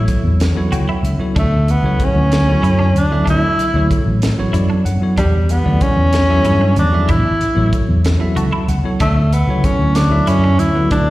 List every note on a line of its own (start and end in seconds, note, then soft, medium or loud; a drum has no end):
0.00 0.33 F#3 medium
0.00 0.33 B3 medium
0.00 0.13 E4 loud
0.00 0.34 E4 medium
0.00 0.34 A4 medium
0.00 0.34 C#5 medium
0.08 kick medium
0.08 closed hi-hat medium
0.24 0.51 E2 medium
0.40 snare loud
0.40 closed hi-hat medium
0.55 0.97 F#3 medium
0.55 0.98 B3 medium
0.55 0.98 E4 medium
0.55 0.98 A4 medium
0.55 0.98 C#5 medium
0.71 0.85 C#2 medium
0.71 0.81 F#4 medium
0.71 1.02 G5 medium
0.71 closed hi-hat medium
0.89 1.06 E4 medium
1.03 1.17 C#2 medium
1.03 1.34 E5 medium
1.03 closed hi-hat medium
1.19 1.35 F#3 medium
1.19 1.36 B3 medium
1.19 1.36 E4 medium
1.19 1.36 A4 medium
1.19 1.36 C#5 medium
1.19 muted fingered electric bass stroke soft
1.36 1.77 D2 medium
1.36 1.72 A3 medium
1.36 1.54 D4 medium
1.36 kick loud
1.36 closed hi-hat medium
1.68 2.06 B3 medium
1.68 closed hi-hat soft
1.83 1.97 C#2 loud
1.83 2.25 F#3 medium
1.83 2.25 B3 medium
1.83 2.26 E4 medium
1.83 2.26 A4 medium
1.83 2.26 C#5 medium
1.99 muted fingered electric bass stroke soft
1.99 kick medium
1.99 closed hi-hat medium
2.04 3.00 C#4 loud
2.15 2.56 D2 loud
2.32 snare loud
2.32 closed hi-hat medium
2.47 2.89 F#3 medium
2.47 2.89 B3 medium
2.47 2.89 E4 medium
2.47 2.89 A4 medium
2.47 2.90 C#5 medium
2.63 2.94 F#2 medium
2.63 2.72 E4 medium
2.63 closed hi-hat soft
2.79 2.97 D4 medium
2.94 3.22 D2 medium
2.94 closed hi-hat medium
2.98 3.29 D4 medium
3.10 3.52 F#3 medium
3.10 3.53 B3 medium
3.10 3.53 E4 medium
3.10 3.53 A4 medium
3.10 3.53 E5 medium
3.26 3.41 D2 medium
3.26 3.44 D4 medium
3.26 kick medium
3.26 closed hi-hat medium
3.30 3.96 E4 loud
3.58 muted fingered electric bass stroke soft
3.58 closed hi-hat medium
3.74 3.88 D2 loud
3.74 4.16 F#3 medium
3.74 4.16 B3 medium
3.74 4.17 E4 medium
3.74 4.17 A4 medium
3.74 4.17 C#5 medium
3.91 kick medium
3.91 closed hi-hat medium
4.06 4.34 A1 medium
4.22 snare medium
4.22 closed hi-hat medium
4.38 4.80 F#3 medium
4.38 4.80 B3 medium
4.38 4.80 E4 medium
4.38 4.80 A4 medium
4.38 4.81 C#5 medium
4.53 4.68 F#2 medium
4.53 4.62 E4 medium
4.53 4.84 D5 medium
4.53 closed hi-hat medium
4.70 4.88 D4 medium
4.85 4.99 F#2 medium
4.85 5.16 F#5 medium
4.85 closed hi-hat medium
5.01 5.18 F#3 medium
5.01 5.18 B3 medium
5.01 5.18 E4 medium
5.01 5.19 A4 medium
5.01 5.19 C#5 medium
5.01 muted fingered electric bass stroke soft
5.17 5.59 E2 medium
5.17 5.53 G3 medium
5.17 5.36 D4 medium
5.17 kick medium
5.17 closed hi-hat medium
5.49 5.84 B3 medium
5.49 closed hi-hat medium
5.64 5.80 D2 loud
5.64 6.07 F#3 medium
5.64 6.07 B3 medium
5.64 6.07 E4 medium
5.64 6.07 A4 medium
5.64 6.08 D5 medium
5.81 6.78 C#4 loud
5.81 muted fingered electric bass stroke soft
5.81 kick medium
5.81 closed hi-hat medium
5.96 6.38 E2 medium
6.13 snare loud
6.13 closed hi-hat medium
6.29 6.71 F#3 medium
6.29 6.71 B3 medium
6.29 6.71 E4 medium
6.29 6.71 A4 medium
6.29 6.72 E5 medium
6.44 6.78 G2 medium
6.44 6.54 E4 medium
6.44 closed hi-hat medium
6.61 6.79 D4 medium
6.76 7.10 E2 medium
6.76 7.12 D4 medium
6.76 closed hi-hat medium
6.92 7.09 F#3 medium
6.92 7.09 B3 medium
6.92 7.09 E4 medium
6.92 7.10 A4 medium
6.92 7.10 E5 medium
7.08 7.23 A1 medium
7.08 7.27 E4 medium
7.08 7.82 E4 loud
7.08 kick loud
7.08 closed hi-hat medium
7.41 muted fingered electric bass stroke soft
7.41 closed hi-hat medium
7.55 7.71 A1 loud
7.55 7.98 F#3 medium
7.55 7.98 B3 medium
7.55 7.98 E4 medium
7.55 7.98 A4 medium
7.55 7.99 C#5 medium
7.73 kick medium
7.73 closed hi-hat soft
7.88 8.16 E2 medium
8.05 snare loud
8.05 closed hi-hat medium
8.19 8.61 F#3 medium
8.19 8.62 B3 medium
8.19 8.62 E4 medium
8.19 8.62 A4 medium
8.19 8.63 E5 medium
8.36 8.50 C#2 medium
8.36 8.45 F#4 medium
8.36 8.67 A5 medium
8.36 closed hi-hat medium
8.52 8.70 E4 medium
8.68 8.82 C#2 medium
8.68 8.98 F#5 medium
8.68 closed hi-hat medium
8.83 9.00 F#3 medium
8.83 9.00 B3 medium
8.83 9.01 E4 medium
8.83 9.01 A4 medium
8.83 9.01 C#5 medium
8.83 muted fingered electric bass stroke soft
9.00 9.41 D2 medium
9.00 9.35 A3 medium
9.00 9.18 D4 medium
9.00 kick loud
9.00 closed hi-hat medium
9.33 9.66 B3 medium
9.33 closed hi-hat medium
9.47 9.62 C#2 loud
9.47 9.90 F#3 medium
9.47 9.90 B3 medium
9.47 9.90 E4 medium
9.47 9.91 A4 medium
9.47 9.91 C#5 medium
9.63 9.97 C#4 medium
9.63 muted fingered electric bass stroke soft
9.63 kick medium
9.63 closed hi-hat medium
9.79 10.21 D2 loud
9.95 10.30 D4 medium
9.95 snare loud
9.95 closed hi-hat medium
10.09 10.52 F#3 medium
10.09 10.53 B3 medium
10.09 10.53 E4 medium
10.09 10.53 A4 medium
10.09 10.54 E5 loud
10.27 10.58 F#2 medium
10.27 10.61 C#4 loud
10.27 10.36 E4 medium
10.27 closed hi-hat medium
10.44 10.62 D4 medium
10.58 10.86 D2 medium
10.58 10.91 E4 loud
10.58 closed hi-hat medium
10.74 11.10 F#3 medium
10.74 11.10 B3 medium
10.74 11.10 E4 medium
10.74 11.10 A4 medium
10.74 11.10 B4 medium
10.91 11.05 D2 medium
10.91 11.10 D4 loud
10.91 11.10 D4 medium
10.91 kick medium
10.91 closed hi-hat medium